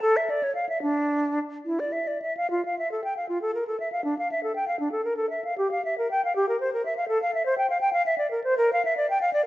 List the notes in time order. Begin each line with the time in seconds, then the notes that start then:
0.02 A4
0.17 E5
0.30 D5
0.43 C#5
0.55 F5
0.69 E5
0.82 D4
1.66 E4
1.80 D5
1.92 E5
2.07 D5
2.22 E5
2.37 F5
2.51 F4
2.65 F5
2.79 E5
2.92 A4
3.04 G5
3.17 F5
3.29 F4
3.42 A4
3.55 A#4
3.67 A4
3.80 E5
3.92 F5
4.04 D4
4.19 F5
4.32 E5
4.43 A4
4.56 G5
4.68 F5
4.80 D4
4.92 A4
5.05 A#4
5.17 A4
5.30 E5
5.44 F5
5.58 G4
5.71 F5
5.85 E5
5.98 A#4
6.11 G5
6.25 F5
6.36 G4
6.49 A#4
6.60 C5
6.73 A#4
6.85 E5
6.97 F5
7.08 A4
7.23 F5
7.34 E5
7.46 C5
7.58 G5
7.70 F5
7.81 G5
7.93 F5
8.06 E5
8.18 D5
8.31 A#4
8.44 C5
8.58 A#4
8.73 F5
8.85 E5
8.97 D5
9.10 G5
9.21 F5
9.33 D5